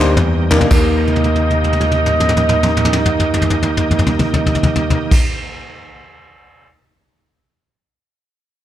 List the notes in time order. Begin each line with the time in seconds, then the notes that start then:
Already playing: D2 G3 A#3 D#4 G4 A#4 D#5
0.00 A#3 D4 G4 C5, clap
0.17 E2, mid tom
0.50 A#3 D4 D#4 G4 A#4, clap, floor tom
0.60 A#3 D4 D#4 G4 A#4, floor tom
0.69 D#2 D#3 A#3 D#4 G4 D#5, kick, clap, crash
0.73 A#4
1.07 high tom
1.16 high tom
1.24 high tom
1.36 high tom
1.50 high tom
1.64 high tom
1.73 high tom
1.81 high tom
1.92 high tom
2.06 mid tom
2.20 mid tom
2.29 mid tom
2.37 mid tom
2.49 mid tom
2.63 mid tom
2.77 mid tom
2.85 mid tom
2.93 mid tom
3.06 mid tom
3.20 mid tom
3.34 mid tom
3.42 mid tom
3.50 mid tom
3.63 mid tom
3.77 mid tom
3.91 mid tom
3.99 mid tom
4.07 floor tom
4.19 floor tom
4.34 floor tom
4.46 floor tom
4.55 floor tom
4.63 floor tom
4.76 floor tom
4.90 floor tom
5.11 kick, crash